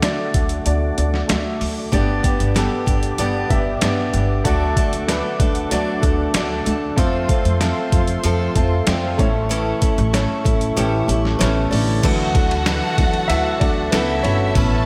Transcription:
Already playing: upright bass D2, upright piano D3 A3 D4 F#4 D5, analog synth pad A4 D5 F#5 D6
0.02 upright piano A3 D4 F#4 D5, snare, closed hi-hat
0.34 upright bass D2, kick, closed hi-hat
0.49 closed hi-hat
0.66 upright bass D2, upright piano A3 D4 F#4 D5, closed hi-hat
0.97 upright bass D2, upright piano A3 D4 F#4 D5, closed hi-hat
1.14 snare
1.28 upright bass D2, upright piano A3 D4 F#4 E5, snare, closed hi-hat
1.61 upright bass D2, open hi-hat
1.92 upright bass G1, upright piano G2 A3 D4 G4 D5, steel-string acoustic guitar G3 B3 D4 G4, analog synth pad B4 G5, kick, closed hi-hat
1.98 upright piano B3
2.23 steel-string acoustic guitar B3 D4 G4, kick, closed hi-hat
2.40 upright bass G1, closed hi-hat
2.54 steel-string acoustic guitar G3 B3 D4 G4, upright piano B3 D4 G4 A4, snare, closed hi-hat
2.86 upright bass G1, steel-string acoustic guitar B3 D4 G4, kick, closed hi-hat
3.03 closed hi-hat
3.18 upright bass G1, steel-string acoustic guitar G3 B3 D4 G4, upright piano B3 D4 G4 D5, closed hi-hat
3.49 upright bass G1, upright piano B3 D4 G4 E5, steel-string acoustic guitar B3 D4 G4, kick, closed hi-hat
3.81 upright bass G1, steel-string acoustic guitar G3 B3 D4 G4, upright piano B3 D4 G4 D5, snare, closed hi-hat
4.13 upright bass G1, steel-string acoustic guitar B3 D4 G4, closed hi-hat
4.44 upright bass D2, upright piano D3 A3 D4 F#4 D5, steel-string acoustic guitar D3 F#3 A3 D4 A4, analog synth pad A4 F#5, kick, closed hi-hat
4.76 steel-string acoustic guitar A3 D4 A4, kick, closed hi-hat
4.93 upright bass D2, closed hi-hat
5.07 steel-string acoustic guitar F#3 A3 D4 A4, upright piano A3 D4 F#4 B4, snare, closed hi-hat
5.40 upright bass D2, steel-string acoustic guitar A3 D4 A4, kick, closed hi-hat
5.55 closed hi-hat
5.70 upright bass D2, steel-string acoustic guitar D3 F#3 A3 D4 A4, upright piano A3 D4 F#4 D5, closed hi-hat
6.02 upright bass D2, upright piano A3 D4 F#4 D5, steel-string acoustic guitar A3 D4 A4, kick, closed hi-hat
6.33 upright bass D2, steel-string acoustic guitar F#3 A3 D4 A4, upright piano A3 D4 F#4 D5, snare, closed hi-hat
6.65 upright bass D2, steel-string acoustic guitar A3 D4 A4, closed hi-hat
6.96 upright bass F2, steel-string acoustic guitar F3 C4 F4 A4, upright piano A3 C4 F4 C5, analog synth pad F4 C5 C6, kick, closed hi-hat
7.29 steel-string acoustic guitar C4 F4 A4, kick, closed hi-hat
7.45 upright bass F2, closed hi-hat
7.60 steel-string acoustic guitar F3 C4 F4 A4, upright piano A3 C4 F4 A4, snare, closed hi-hat
7.92 upright bass F2, steel-string acoustic guitar C4 F4 A4, kick, closed hi-hat
8.07 closed hi-hat
8.23 upright bass F2, steel-string acoustic guitar F3 C4 F4 A4, closed hi-hat
8.40 upright piano C5 F5
8.55 upright bass F2, steel-string acoustic guitar C4 F4 A4, upright piano E5 A5, kick, closed hi-hat
8.87 upright bass F2, steel-string acoustic guitar F3 C4 F4 A4, upright piano D5 G5, snare, closed hi-hat
9.03 upright piano C5 F5
9.18 upright bass A1, upright piano A2 A3 C#4 E4 C#5, steel-string acoustic guitar A3 C#4 E4 A4, analog synth pad E5 C#6, kick, closed hi-hat
9.49 steel-string acoustic guitar A2 E3 A3 C#4 E4 A4, closed hi-hat
9.81 steel-string acoustic guitar A3 C#4 E4 A4, kick, closed hi-hat
9.98 upright bass A1, closed hi-hat
10.13 upright piano A3 C#4 E4 C#5, steel-string acoustic guitar A3 C#4 E4 A4, snare, closed hi-hat
10.45 upright bass A1, steel-string acoustic guitar A3 C#4 E4 A4, kick, closed hi-hat
10.61 closed hi-hat
10.76 upright bass A1, steel-string acoustic guitar A2 E3 A3 C#4 E4 A4, upright piano A3 C#4 E4 G4, closed hi-hat
11.08 upright bass A1, upright piano A3 C#4 E4 G4, steel-string acoustic guitar A3 C#4 E4 A4, closed hi-hat
11.25 snare
11.38 upright bass A1, steel-string acoustic guitar A3 C#4 E4 A4, upright piano A3 B3 C#4 E4 B4 C#5, snare, closed hi-hat
11.70 upright bass A1, upright piano D3 D5, steel-string acoustic guitar A3 C#4 E4 A4, open hi-hat
12.02 upright bass D2, steel-string acoustic guitar D3 E3 A3 F#4 A4, upright piano E3 F#3 D4, violin section F#4 F#5, analog synth pad A4 E5 F#5 A5, kick, crash, ride
12.35 steel-string acoustic guitar A3 F#4 A4, kick, ride
12.51 ride
12.66 steel-string acoustic guitar D3 E3 A3 F#4 A4, snare, ride
12.97 upright bass D2, upright piano E3 F#3 D4, steel-string acoustic guitar A3 F#4 A4, kick, ride
13.13 ride
13.28 upright bass D2, steel-string acoustic guitar E3 A3 F#4, upright piano E4 E5, ride
13.32 steel-string acoustic guitar A4
13.59 upright bass D2, upright piano D4 D5, steel-string acoustic guitar F#4 A4, kick, ride
13.64 steel-string acoustic guitar A3
13.91 upright bass C#2, steel-string acoustic guitar D3 E3 A3 F#4 A4, upright piano B3 B4, violin section E4 E5, snare, ride
14.23 upright bass G1, steel-string acoustic guitar A3 F#4 A4, upright piano C#4 C#5, ride
14.55 upright bass A1, upright piano B2 A3 B3, steel-string acoustic guitar A3 C#4 E4 B4, violin section A4 A5, analog synth pad B5 C#6, kick, ride

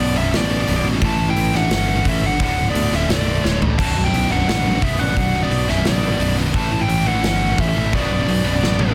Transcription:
Already playing: distorted electric guitar B1 F#2 B2, lead electric guitar B3 D5
0.00 picked electric bass B1, distorted electric guitar F#2
0.15 picked electric bass B0, distorted electric guitar B1 F#2 B2, lead electric guitar C#4 E5
0.24 distorted electric guitar B1 F#2
0.33 picked electric bass A1, distorted electric guitar B1 F#2, lead electric guitar B3 D5, snare, open hi-hat
0.50 distorted electric guitar B1 F#2
0.59 distorted electric guitar B1 F#2
0.67 picked electric bass B0, distorted electric guitar B1 F#2 B2, open hi-hat
0.84 picked electric bass A1, distorted electric guitar B1 F#2
0.94 distorted electric guitar B1 F#2
1.01 picked electric bass A1, distorted electric guitar A2 E3 A3, lead electric guitar E4 A5, kick, open hi-hat
1.19 distorted electric guitar A2 E3
1.29 distorted electric guitar A2 E3, lead electric guitar E4 G5
1.36 picked electric bass A1, distorted electric guitar A2 E3, open hi-hat
1.53 picked electric bass A1, distorted electric guitar A2 E3 A3, lead electric guitar D4 F#5, snare
1.63 distorted electric guitar A2 E3
1.70 picked electric bass G1, distorted electric guitar A2 E3, lead electric guitar C#4 F#5, snare, open hi-hat
1.88 distorted electric guitar A2 E3
1.96 distorted electric guitar A2 E3
2.05 picked electric bass A1, distorted electric guitar A2 E3 A3, lead electric guitar C#4 E5, kick, open hi-hat
2.22 picked electric bass G1, distorted electric guitar A2 E3, lead electric guitar D4
2.26 lead electric guitar F#5
2.32 distorted electric guitar A2 E3
2.40 picked electric bass D1, distorted electric guitar D2 A2 D3, lead electric guitar D4 F#5, kick, open hi-hat
2.58 distorted electric guitar D2 A2
2.66 distorted electric guitar D2 A2, lead electric guitar B3
2.70 lead electric guitar D5
2.75 picked electric bass D2, distorted electric guitar D2 A2, open hi-hat
2.92 picked electric bass D1, distorted electric guitar D2 A2 D3, lead electric guitar C#4, snare
2.96 lead electric guitar E5
3.02 distorted electric guitar D2 A2
3.08 picked electric bass B0, distorted electric guitar D2 A2, lead electric guitar A3 D5, snare, open hi-hat
3.27 distorted electric guitar D2 A2
3.35 distorted electric guitar D2 A2
3.44 picked electric bass D1, distorted electric guitar D2 A2 D3, lead electric guitar G#3 C#5, snare
3.62 picked electric bass A1, distorted electric guitar D2 A2, floor tom
3.70 distorted electric guitar D2 A2
3.79 picked electric bass B0, distorted electric guitar B1 F#2 B2, lead electric guitar F#4 A5, kick, open hi-hat, crash
3.96 distorted electric guitar B1 F#2
4.05 distorted electric guitar B1 F#2, lead electric guitar E4 G5
4.13 picked electric bass B1, distorted electric guitar B1 F#2, open hi-hat
4.30 picked electric bass B0, distorted electric guitar B1 F#2 B2, lead electric guitar D4 F#5
4.40 distorted electric guitar B1 F#2
4.48 picked electric bass A1, distorted electric guitar B1 F#2, lead electric guitar D4 F#5, snare, open hi-hat
4.66 distorted electric guitar B1 F#2
4.75 distorted electric guitar B1 F#2
4.82 picked electric bass B0, distorted electric guitar B1 F#2 B2, lead electric guitar B3 E5, kick, open hi-hat
4.99 picked electric bass A1, distorted electric guitar B1 F#2, lead electric guitar D4 F#5
5.09 distorted electric guitar B1 F#2
5.17 picked electric bass B0, distorted electric guitar B1 F#2 B2, lead electric guitar D4 F#5, kick, open hi-hat
5.35 distorted electric guitar B1 F#2
5.42 distorted electric guitar B1 F#2, lead electric guitar B3 D5
5.51 distorted electric guitar B1 F#2, picked electric bass B1, open hi-hat
5.68 picked electric bass B0, distorted electric guitar B1 F#2 B2, lead electric guitar C#4 E5, snare
5.78 distorted electric guitar B1 F#2
5.85 picked electric bass A1, distorted electric guitar B1 F#2, lead electric guitar B3 D5, snare, open hi-hat
6.03 distorted electric guitar B1 F#2
6.11 distorted electric guitar B1 F#2
6.20 picked electric bass B0, distorted electric guitar B1 F#2 B2, open hi-hat
6.38 picked electric bass B0, distorted electric guitar B1 F#2
6.46 distorted electric guitar B1 F#2
6.54 picked electric bass A1, distorted electric guitar A2 E3 A3, lead electric guitar E4 A5, kick, open hi-hat
6.72 distorted electric guitar A2 E3
6.80 distorted electric guitar A2 E3, lead electric guitar E4 G5
6.88 picked electric bass A1, distorted electric guitar A2 E3, open hi-hat
7.06 picked electric bass A1, distorted electric guitar A2 E3 A3, lead electric guitar D4 F#5
7.15 distorted electric guitar A2 E3
7.22 picked electric bass G1, distorted electric guitar A2 E3, lead electric guitar C#4, snare, open hi-hat
7.26 lead electric guitar F#5
7.41 distorted electric guitar A2 E3
7.50 distorted electric guitar A2 E3
7.57 picked electric bass A1, distorted electric guitar A2 E3, lead electric guitar C#4 E5, kick, open hi-hat
7.61 distorted electric guitar A3, lead electric guitar C#4
7.69 lead electric guitar E5
7.76 picked electric bass A1, distorted electric guitar A2 E3
7.84 distorted electric guitar A2 E3
7.92 picked electric bass B0, distorted electric guitar B1 F#2 B2, lead electric guitar B3 D5, kick, open hi-hat
8.10 distorted electric guitar B1 F#2
8.19 distorted electric guitar B1 F#2
8.26 distorted electric guitar B1 F#2, picked electric bass B1, open hi-hat
8.44 picked electric bass B0, distorted electric guitar B1 F#2 B2
8.53 distorted electric guitar B1 F#2
8.62 picked electric bass A1, distorted electric guitar B1 F#2, snare
8.79 distorted electric guitar B1 F#2, high tom
8.89 distorted electric guitar B1 F#2

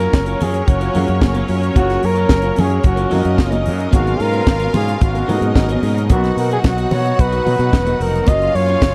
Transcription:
Already playing: grand piano F#3 A#3 C#4 F4 A#4, pipe organ F#3 C#4 A#4, string section C#4 C#5, flugelhorn A#4
0.00 clean electric guitar C#4 F4 C#5, closed hi-hat
0.12 fingered electric bass F#1, muted clean electric guitar stroke, kick, snare, high conga
0.26 clean electric guitar C#4 F4 A#4, closed hi-hat
0.39 fingered electric bass F#2, clean electric guitar C#4 F4 A#4, flugelhorn G#4, open hi-hat, muted conga, low conga
0.54 muted clean electric guitar stroke, closed hi-hat
0.67 fingered electric bass F#1, flugelhorn F#4, muted clean electric guitar stroke, kick, closed hi-hat
0.80 clean electric guitar C#4 F4 A#4, closed hi-hat
0.94 fingered electric bass F#2, grand piano F#3 A#3 C#4 G#4 F5, clean electric guitar C#4 F4 A#4, open hi-hat, muted conga, low conga
1.07 fingered electric bass F#2, muted clean electric guitar stroke, closed hi-hat
1.21 fingered electric bass F#1, muted clean electric guitar stroke, kick, snare, high conga
1.33 clean electric guitar C#4 F4 A#4, closed hi-hat, high conga
1.47 fingered electric bass F#2, clean electric guitar C#4 F4 A#4, open hi-hat
1.61 muted clean electric guitar stroke, closed hi-hat
1.75 fingered electric bass F#1, grand piano F#3 A#3 C#4 F4 G#4, clean electric guitar C#4 F4 A#4, flugelhorn F#4, kick, closed hi-hat, muted conga
1.84 grand piano A#4
1.90 snare, closed hi-hat
2.02 fingered electric bass F#2, flugelhorn A#4, muted clean electric guitar stroke, open hi-hat
2.15 clean electric guitar C#4 F4 A#4, closed hi-hat
2.29 fingered electric bass F#1, muted clean electric guitar stroke, kick, snare, high conga
2.42 clean electric guitar C#4 F4 A#4, closed hi-hat
2.56 fingered electric bass F#2, clean electric guitar C#4 F4 A#4, flugelhorn G#4, open hi-hat, muted conga, low conga
2.70 muted clean electric guitar stroke, closed hi-hat
2.84 fingered electric bass F#1, flugelhorn F#4, muted clean electric guitar stroke, kick, closed hi-hat
2.96 clean electric guitar C#4 F4 A#4, closed hi-hat
3.10 fingered electric bass F#2, grand piano F#3 A#3 C#4 A#4 F5, clean electric guitar C#4 F4 A#4, string section D#4 D#5, open hi-hat
3.14 muted conga, low conga
3.24 fingered electric bass F#2, muted clean electric guitar stroke, closed hi-hat
3.38 fingered electric bass F#1, kick, snare, high conga
3.51 clean electric guitar C#4 F4 A#4, closed hi-hat, high conga
3.64 fingered electric bass F#2, muted clean electric guitar stroke, open hi-hat
3.79 muted clean electric guitar stroke, closed hi-hat
3.91 fingered electric bass G#1, pipe organ B2, grand piano F#3 A#3 B3 D#4 G#4, clean electric guitar B3 F#4 A#4, string section F4 F5, flugelhorn F#4, kick, closed hi-hat, muted conga
4.07 closed hi-hat
4.19 fingered electric bass G#2, flugelhorn A#4, muted clean electric guitar stroke, open hi-hat
4.32 clean electric guitar B3 F#4 B4, closed hi-hat
4.47 fingered electric bass G#1, muted clean electric guitar stroke, kick, snare, high conga
4.59 clean electric guitar B3 F#4 A#4, closed hi-hat
4.74 fingered electric bass G#2, clean electric guitar B3 F#4 A#4, flugelhorn G#4, open hi-hat, muted conga, low conga
4.87 muted clean electric guitar stroke, closed hi-hat
5.01 fingered electric bass G#1, flugelhorn F#4, muted clean electric guitar stroke, kick, closed hi-hat
5.15 clean electric guitar B3 F#4 A#4, closed hi-hat
5.28 fingered electric bass G#2, grand piano F#3 A#3 B3 D#4 G#4, clean electric guitar B3 F#4 A#4, string section D#4 D#5, open hi-hat, muted conga, low conga
5.41 fingered electric bass G#2, muted clean electric guitar stroke, closed hi-hat
5.55 fingered electric bass G#1, muted clean electric guitar stroke, kick, snare, high conga
5.69 clean electric guitar B3 F#4 A#4, closed hi-hat, high conga
5.83 fingered electric bass G#2, clean electric guitar B3 F#4 A#4, open hi-hat
5.96 muted clean electric guitar stroke, closed hi-hat
6.09 fingered electric bass B1, grand piano F#3 A#3 B3 C#4 A#4, pipe organ F#3 D#4, clean electric guitar F#4 A#4 D#5, string section F#4 F#5, flugelhorn F#4, kick, closed hi-hat, muted conga
6.17 grand piano D#4
6.24 snare, closed hi-hat
6.37 fingered electric bass B2, flugelhorn A#4, muted clean electric guitar stroke, open hi-hat
6.50 clean electric guitar F#4 A#4 D#5, flugelhorn G#4, closed hi-hat
6.64 fingered electric bass B1, flugelhorn F#4, muted clean electric guitar stroke, kick, snare, high conga
6.77 clean electric guitar F#4 A#4 D#5, closed hi-hat
6.91 fingered electric bass B2, clean electric guitar F#4 A#4 D#5, flugelhorn C#5, open hi-hat, muted conga, low conga
7.05 muted clean electric guitar stroke, closed hi-hat
7.19 fingered electric bass B1, flugelhorn B4, muted clean electric guitar stroke, kick, closed hi-hat
7.31 clean electric guitar F#4 A#4 D#5, closed hi-hat
7.45 fingered electric bass B2, grand piano F#3 B3 D#4 B4, clean electric guitar F#4 A#4 D#5, open hi-hat, low conga
7.59 fingered electric bass B2, muted clean electric guitar stroke, closed hi-hat
7.73 fingered electric bass E1, muted clean electric guitar stroke, kick, snare, high conga
7.86 clean electric guitar F#4 A#4 D#5, closed hi-hat, high conga
8.00 fingered electric bass F1, flugelhorn A#4, muted clean electric guitar stroke, open hi-hat
8.13 muted clean electric guitar stroke, closed hi-hat
8.27 fingered electric bass F#1, grand piano F#3 A#3 C#4 F4 A#4, pipe organ C#4 F4, clean electric guitar C#4 F4 A#4, string section F4 F5, flugelhorn D#5, kick, closed hi-hat, muted conga
8.42 closed hi-hat
8.55 fingered electric bass F#2, flugelhorn C#5, muted clean electric guitar stroke, open hi-hat
8.68 clean electric guitar C#4 F4 C#5, closed hi-hat
8.82 fingered electric bass F#1, muted clean electric guitar stroke, kick, snare, high conga

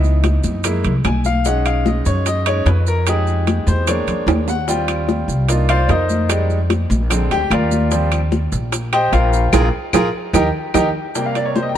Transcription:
Already playing: upright bass C#2, grand piano E3 B3 D#4
0.04 high bongo, high conga, maracas
0.24 high bongo, high conga, high timbale, maracas
0.44 upright bass F#2, high bongo, high conga, maracas
0.64 grand piano G#3 A#3 E4, high bongo, high conga, low conga, high timbale, claves, maracas
0.84 upright bass C2, high conga, low conga, high timbale, maracas
1.04 upright bass B1, grand piano G#5, high bongo, low bongo, high conga, high timbale, low timbale, claves, maracas
1.25 grand piano F5, high bongo, high conga, maracas
1.45 grand piano G#3 C#4 D#4 F#5, high bongo, high conga, maracas
1.65 grand piano F5, high bongo, high conga, high timbale, claves, maracas
1.86 grand piano D#5, high bongo, high conga, maracas
2.06 upright bass F#2, grand piano C#5, maracas
2.26 grand piano D#5, high bongo, high conga, high timbale, maracas
2.46 grand piano G#3 C#4 D#4 C#5, high bongo, high conga, high timbale, claves, maracas
2.66 upright bass F2, grand piano B4, high bongo, low bongo, high conga, high timbale, low timbale, maracas
2.87 grand piano A#4, high bongo, maracas
3.07 grand piano G#3 D#4 G4 G#4, high bongo, high conga, high timbale, claves, maracas
3.27 high bongo, high conga, maracas
3.47 high bongo, high conga, high timbale, maracas
3.67 upright bass E2, grand piano C5, high bongo, high conga, maracas
3.87 grand piano G#3 A#3 D4 C#5, high bongo, high conga, low conga, high timbale, claves, maracas
4.07 upright bass E2, high conga, low conga, high timbale, maracas
4.27 upright bass D#2, high bongo, low bongo, high conga, high timbale, claves, maracas
4.48 grand piano F#5, high bongo, high conga, low timbale, maracas
4.68 grand piano G3 C4 F4 G5, high bongo, high conga, maracas
4.88 high bongo, high conga, high timbale, claves, maracas
5.09 high bongo, high conga, maracas
5.28 upright bass C2, maracas
5.49 grand piano A#3 D4 D#4 F4, high bongo, high conga, high timbale, maracas
5.69 grand piano F4 C5 D5 F5, high bongo, high conga, high timbale, claves, maracas
5.85 upright bass F2, grand piano D5, high conga, high timbale, low timbale
5.90 grand piano D#4 A#4 C5 D#5, high bongo, low bongo, maracas
6.09 high bongo, high conga, maracas
6.29 grand piano G3 G#3 D#4, high bongo, high conga, high timbale, claves, maracas
6.50 high bongo, high conga, maracas
6.70 high bongo, high conga, high timbale, maracas
6.90 upright bass A#1, high bongo, high conga, maracas
7.10 grand piano D3 G#3 C4, high bongo, high conga, low conga, high timbale, claves, maracas
7.31 upright bass D2, grand piano G4 G5, high conga, high timbale, maracas
7.50 upright bass D#2, grand piano F4 A#4 D5 F5, high bongo, low bongo, high conga, high timbale, claves, maracas
7.71 high bongo, high conga, maracas
7.91 grand piano F3 G3 C4, high bongo, high conga, maracas
8.12 high bongo, high conga, high timbale, claves, maracas
8.32 high bongo, high conga, maracas
8.52 upright bass A#1, maracas
8.72 high bongo, high conga, high timbale, maracas
8.92 grand piano G4 C5 D#5 G5, high bongo, high conga, high timbale, claves, maracas
9.13 upright bass A#1, grand piano F4 A#4 C5 F5, high bongo, low bongo, high conga, high timbale, maracas
9.33 high bongo, maracas
9.53 upright bass A#1, grand piano F4 G#4 A#4, high bongo, low conga, high timbale, claves, maracas
9.93 upright bass A#1, grand piano F4 G#4 A#4, high bongo, low conga, high timbale, claves, maracas
10.33 upright bass D#2, grand piano D#4 G4 A#4, high bongo, low conga, high timbale, claves, maracas
10.74 upright bass D#2, grand piano D#4 G4 A#4, high bongo, low conga, high timbale, claves, maracas
11.15 grand piano C3 G3 A#3 G5, high bongo, high conga, maracas
11.26 grand piano F5
11.35 grand piano D5, high bongo, high conga, high timbale, maracas
11.46 grand piano C#5
11.56 grand piano C5, high bongo, high conga, maracas
11.62 grand piano D#5
11.69 grand piano G5

